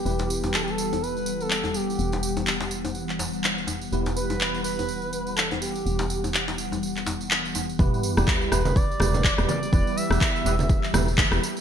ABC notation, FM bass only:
X:1
M:4/4
L:1/16
Q:"Swing 16ths" 1/4=124
K:Em
V:1 name="FM bass" clef=bass
E,,,16 | E,,,16 | E,,,16 | E,,,16 |
E,,, z2 E,,, z2 E,,,3 z E,,,3 E,,, z2 | E,,, z2 E,,, z2 E,,,3 z E,,,3 E,,, z2 |]